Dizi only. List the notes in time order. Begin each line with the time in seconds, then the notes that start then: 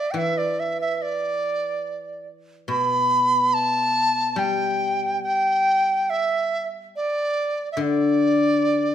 Already playing: D5
0.11 G5
0.17 E5
0.38 D5
0.60 E5
0.81 E5
0.96 E5
1.02 D5
2.69 B5
3.54 A5
4.39 G5
5.24 G5
6.10 E5
6.96 D5
7.72 E5
7.82 D5